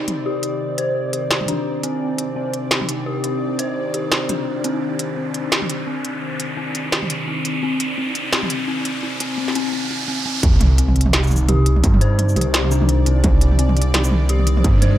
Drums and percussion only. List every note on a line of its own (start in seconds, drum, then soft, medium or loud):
0.08 closed hi-hat medium
0.08 mid tom medium
0.43 closed hi-hat medium
0.78 closed hi-hat medium
1.13 closed hi-hat medium
1.31 snare loud
1.41 mid tom soft
1.46 closed hi-hat medium
1.46 mid tom soft
1.52 mid tom soft
1.83 closed hi-hat medium
2.18 closed hi-hat medium
2.54 closed hi-hat medium
2.71 snare loud
2.81 mid tom soft
2.89 closed hi-hat medium
3.24 closed hi-hat medium
3.59 closed hi-hat medium
3.94 closed hi-hat medium
4.12 snare loud
4.29 closed hi-hat medium
4.29 mid tom medium
4.64 closed hi-hat medium
4.99 closed hi-hat medium
5.34 closed hi-hat medium
5.52 snare loud
5.62 mid tom soft
5.70 closed hi-hat medium
6.05 closed hi-hat medium
6.40 closed hi-hat medium
6.75 closed hi-hat medium
6.92 snare loud
7.03 mid tom soft
7.10 closed hi-hat medium
7.45 closed hi-hat medium
7.80 closed hi-hat medium
8.15 closed hi-hat medium
8.33 snare loud
8.43 mid tom medium
8.50 closed hi-hat medium
8.85 closed hi-hat medium
9.20 closed hi-hat medium
9.48 snare soft
9.55 closed hi-hat medium
10.43 kick loud
10.43 closed hi-hat medium
10.43 mid tom medium
10.61 closed hi-hat medium
10.61 mid tom medium
10.78 closed hi-hat medium
10.88 mid tom medium
10.96 closed hi-hat medium
11.01 closed hi-hat medium
11.06 mid tom medium
11.13 snare loud
11.13 closed hi-hat medium
11.23 shaker soft
11.27 mid tom medium
11.27 shaker soft
11.31 shaker soft
11.36 shaker medium
11.49 closed hi-hat medium
11.49 mid tom medium
11.66 closed hi-hat medium
11.76 mid tom medium
11.84 kick loud
11.84 closed hi-hat medium
11.94 mid tom medium
12.01 closed hi-hat medium
12.19 closed hi-hat medium
12.19 mid tom medium
12.29 shaker soft
12.36 closed hi-hat medium
12.36 mid tom medium
12.41 closed hi-hat medium
12.54 snare loud
12.54 closed hi-hat medium
12.64 mid tom medium
12.71 shaker medium
12.82 mid tom medium
12.89 closed hi-hat medium
13.06 closed hi-hat medium
13.24 kick loud
13.24 closed hi-hat medium
13.24 mid tom medium
13.41 closed hi-hat medium
13.51 mid tom medium
13.59 closed hi-hat medium
13.69 mid tom medium
13.77 closed hi-hat soft
13.82 closed hi-hat medium
13.94 snare loud
13.94 closed hi-hat medium
13.94 mid tom medium
14.04 shaker medium
14.12 mid tom medium
14.29 closed hi-hat medium
14.39 mid tom medium
14.47 closed hi-hat medium
14.57 mid tom medium
14.64 kick loud
14.64 closed hi-hat medium
14.82 closed hi-hat medium
14.82 mid tom medium